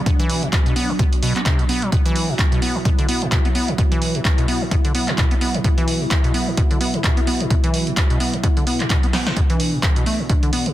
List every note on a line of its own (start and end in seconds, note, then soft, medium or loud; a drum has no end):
0.00 10.73 B2 medium
0.00 9.33 F#3 medium
0.00 1.91 D4 medium
0.06 0.11 B2 loud
0.06 kick loud
0.06 closed hi-hat medium
0.19 0.44 E3 loud
0.19 closed hi-hat soft
0.30 open hi-hat loud
0.43 0.48 B2 medium
0.43 closed hi-hat soft
0.53 kick loud
0.53 clap loud
0.53 closed hi-hat medium
0.66 0.74 B2 medium
0.66 closed hi-hat soft
0.76 0.91 B3 medium
0.76 open hi-hat medium
0.89 0.93 B2 medium
0.99 1.04 B2 loud
0.99 kick loud
0.99 closed hi-hat medium
1.13 closed hi-hat soft
1.23 1.34 B2 loud
1.23 open hi-hat loud
1.36 1.41 B3 medium
1.36 clap soft
1.36 closed hi-hat soft
1.46 1.61 C3 medium
1.46 kick loud
1.46 clap loud
1.46 closed hi-hat medium
1.59 1.65 B2 medium
1.59 closed hi-hat soft
1.69 1.84 B3 medium
1.69 open hi-hat medium
1.82 1.91 F#3 loud
1.82 closed hi-hat soft
1.92 1.97 B2 loud
1.92 9.35 E4 medium
1.92 kick loud
1.92 closed hi-hat medium
2.06 2.30 E3 loud
2.06 closed hi-hat medium
2.16 open hi-hat loud
2.29 2.34 B2 loud
2.39 kick loud
2.39 clap loud
2.39 closed hi-hat medium
2.52 2.60 B2 medium
2.52 closed hi-hat medium
2.62 2.77 B3 medium
2.62 open hi-hat medium
2.75 2.79 B2 medium
2.85 2.90 B2 medium
2.85 kick loud
2.85 closed hi-hat medium
2.99 3.07 D3 medium
2.99 closed hi-hat soft
3.09 3.23 B3 medium
3.09 open hi-hat loud
3.22 3.27 B2 medium
3.22 closed hi-hat soft
3.32 3.39 B2 medium
3.32 kick loud
3.32 clap loud
3.32 closed hi-hat medium
3.45 3.48 B3 medium
3.45 closed hi-hat soft
3.55 3.70 B3 medium
3.55 open hi-hat medium
3.68 3.74 B2 loud
3.68 closed hi-hat soft
3.78 3.83 B2 loud
3.78 kick loud
3.78 closed hi-hat medium
3.92 4.16 E3 loud
3.92 closed hi-hat medium
4.02 open hi-hat medium
4.15 4.20 B2 loud
4.15 closed hi-hat soft
4.25 kick loud
4.25 clap loud
4.25 closed hi-hat medium
4.38 4.46 B2 medium
4.38 closed hi-hat soft
4.48 4.63 B3 medium
4.48 open hi-hat medium
4.61 4.65 B2 medium
4.71 4.76 B2 medium
4.71 kick loud
4.71 closed hi-hat medium
4.85 4.93 D3 medium
4.85 closed hi-hat soft
4.95 5.09 B3 medium
4.95 open hi-hat loud
5.08 5.13 B2 loud
5.08 clap soft
5.08 closed hi-hat soft
5.18 5.25 B2 medium
5.18 kick loud
5.18 clap loud
5.18 closed hi-hat medium
5.31 5.35 B3 medium
5.31 closed hi-hat soft
5.41 5.56 B3 medium
5.41 open hi-hat medium
5.54 5.60 B2 loud
5.54 closed hi-hat soft
5.64 5.69 B2 loud
5.64 kick loud
5.64 closed hi-hat medium
5.78 6.03 E3 loud
5.78 closed hi-hat medium
5.88 open hi-hat medium
6.01 6.06 B2 loud
6.11 kick loud
6.11 clap loud
6.11 closed hi-hat medium
6.24 6.32 B2 medium
6.24 closed hi-hat medium
6.34 6.49 B3 medium
6.34 open hi-hat medium
6.47 6.51 B2 medium
6.57 6.62 B2 loud
6.57 kick loud
6.57 closed hi-hat medium
6.71 6.79 D3 medium
6.71 closed hi-hat medium
6.81 6.95 B3 medium
6.81 open hi-hat loud
6.94 6.99 B2 loud
6.94 closed hi-hat soft
7.04 7.11 B2 medium
7.04 kick loud
7.04 clap loud
7.04 closed hi-hat medium
7.17 7.21 B3 medium
7.17 closed hi-hat medium
7.27 7.42 B3 medium
7.27 open hi-hat medium
7.40 7.46 B2 loud
7.40 closed hi-hat soft
7.50 7.55 B2 loud
7.50 kick loud
7.50 closed hi-hat medium
7.64 7.89 E3 loud
7.64 closed hi-hat medium
7.74 open hi-hat medium
7.87 7.93 B2 loud
7.87 closed hi-hat soft
7.97 kick loud
7.97 clap loud
7.97 closed hi-hat medium
8.10 8.19 B2 medium
8.10 closed hi-hat medium
8.20 8.35 B3 medium
8.20 open hi-hat medium
8.33 8.37 B2 medium
8.33 closed hi-hat soft
8.43 8.48 B2 medium
8.43 kick loud
8.43 closed hi-hat medium
8.57 8.65 D3 medium
8.57 closed hi-hat medium
8.67 8.82 B3 medium
8.67 open hi-hat medium
8.80 8.86 B2 loud
8.80 clap soft
8.80 closed hi-hat soft
8.90 8.97 B2 medium
8.90 kick loud
8.90 clap loud
8.90 closed hi-hat medium
9.03 9.07 B3 medium
9.03 closed hi-hat medium
9.13 9.28 B3 medium
9.13 snare medium
9.13 open hi-hat medium
9.27 9.32 B2 loud
9.27 snare medium
9.27 closed hi-hat soft
9.37 9.41 B2 loud
9.37 10.73 E3 medium
9.37 10.73 D4 medium
9.37 kick loud
9.37 closed hi-hat medium
9.50 9.75 E3 loud
9.50 closed hi-hat medium
9.60 open hi-hat loud
9.73 9.79 B2 loud
9.83 kick loud
9.83 clap loud
9.83 closed hi-hat medium
9.96 10.05 B2 medium
9.96 closed hi-hat medium
10.06 10.21 A3 medium
10.06 open hi-hat medium
10.20 10.23 B2 medium
10.29 10.34 B2 loud
10.29 kick loud
10.29 closed hi-hat medium
10.43 10.51 D3 medium
10.43 closed hi-hat medium
10.53 10.68 B3 medium
10.53 open hi-hat loud
10.66 10.72 B2 loud
10.66 closed hi-hat soft